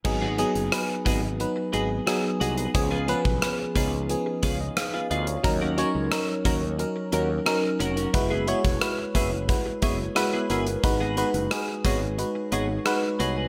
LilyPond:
<<
  \new Staff \with { instrumentName = "Clean electric guitar" } { \time 4/4 \key gis \minor \tempo 4 = 89 r16 <b fis' gis'>16 <b fis' gis'>16 r8. <b fis' gis'>16 r8. <b fis' gis'>16 r8. <b fis' gis'>16 <b fis' gis'>16 | r16 <b eis' gis'>16 <b eis' gis'>16 r8. <b eis' gis'>16 r8. <b eis' gis'>16 r8 <b eis' gis'>16 <b eis' gis'>16 r16 | r16 <cis' fis' ais'>16 <cis' fis' ais'>16 r8. <cis' fis' ais'>16 r8. <cis' fis' ais'>16 r8. <cis' fis' ais'>16 <cis' fis' ais'>16 | r16 <b e' gis'>16 <b e' gis'>16 r8. <b e' gis'>16 r8. <b e' gis'>16 r8 <b e' gis'>16 <b e' gis'>16 r16 |
r16 <b fis' gis'>16 <b fis' gis'>16 r8. <b fis' gis'>16 r8. <b fis' gis'>16 r8. <b fis' gis'>16 <b fis' gis'>16 | }
  \new Staff \with { instrumentName = "FM electric piano" } { \time 4/4 \key gis \minor << { r1 | r2 r8 <eis' cis''>16 dis''16 <gis' eis''>16 <gis' eis''>16 dis''16 <eis' cis''>16~ | <eis' cis''>16 r2. r8. | r1 |
r1 | } \\ { <fis b dis' gis'>8 <fis b dis' gis'>8 <fis b dis' b'>8 <fis b dis' gis'>8 <fis b dis' b'>8 <fis b dis' gis'>8 <fis b dis' gis'>8 <fis b dis' gis'>8 | <eis b cis' gis'>8 <eis b cis' b'>8 <eis b cis' b'>8 <eis b cis' dis'>8 <eis b cis' gis'>8 r4. | <fis cis' dis' ais'>8 <fis cis' dis' cis''>8 <fis cis' dis' ais'>8 <fis cis' dis' ais'>8 <fis cis' dis' ais'>8 <fis cis' dis' ais'>8 <fis cis' dis' ais'>8 <fis cis' dis' ais'>8 | <gis e' fis' b'>8 <gis e' fis' cis''>8 <gis e' fis' b'>8 <gis e' fis' b'>8 <gis e' fis' b'>8 <gis e' fis' cis''>8 <gis e' fis' b'>8 <gis e' fis' ais'>8 |
<gis dis' fis' b'>8 <gis dis' fis' b'>8 <gis dis' fis' gis'>8 <gis dis' fis' cis''>8 <gis dis' fis' b'>8 <gis dis' fis' cis''>8 <gis dis' fis' b'>8 <gis dis' fis' cis''>8 | } >> }
  \new Staff \with { instrumentName = "Fretless electric bass" } { \clef bass \time 4/4 \key gis \minor gis,,8. fis,,16 r8 gis,,8. r16 gis,,8 r8 bis,,8 | cis,8. b,,16 r8 cis,8. r16 cis,8 r8 d,8 | dis,8. cis,16 r8 dis,8. r16 dis,8 r8 eis,,8 | fis,,8. e,,16 r8 fis,,8. r16 fis,,8 r8 g,,8 |
gis,,8. fis,,16 r8 gis,,8. r16 gis,,8 r8 bis,,8 | }
  \new DrumStaff \with { instrumentName = "Drums" } \drummode { \time 4/4 <cymc bd>8 hh16 hh16 <hh ss>8 <hh bd>8 hh8 hh8 <hh ss>8 hh16 hh16 | <hh bd>8 hh16 bd16 <hh ss>8 <hh bd>8 hh8 <hh bd>8 <hh ss>8 hh16 hh16 | <hh bd>8 hh8 <hh ss>8 <hh bd>8 hh8 hh8 <hh ss>8 hh16 hh16 | <hh bd>8 hh16 <hh bd>16 <hh ss>8 <hh bd>8 <hh bd>8 <hh bd>8 <hh ss>8 hh16 hh16 |
<hh bd>8 hh16 hh16 <hh ss>8 <hh bd>8 hh8 hh8 <hh ss>8 hh8 | }
>>